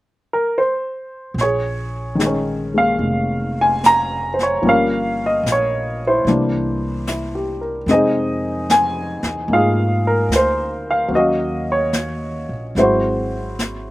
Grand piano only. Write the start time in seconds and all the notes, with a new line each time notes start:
0.33 A#4
0.58 C5
1.41 G#4 C#5
2.15 D#3 G#3
2.22 D#4
2.26 C#4
2.74 G#3 A#3 F5
3.61 G#5
3.86 A#5
4.34 C5
4.43 C#5
4.62 F3 G3 A#3
4.67 C#4 A#4 F5
5.26 D#5
5.52 C#5
6.07 E4 C5
6.27 E3 G3 A#3 D4
7.09 E4
7.35 G4
7.61 A#4
7.88 C3 G#3 C4 D#4 D#5
7.93 G#4
8.71 G#5
9.49 A#3 D#4 F4 F5
9.55 G#4
10.07 A#4
10.36 C5
10.91 F5
11.08 F#3 A#3
11.15 C#4 F#4 D#5
11.19 F5
11.72 C#5
12.78 F#3 G#3 C4 E4 C5
12.82 F#4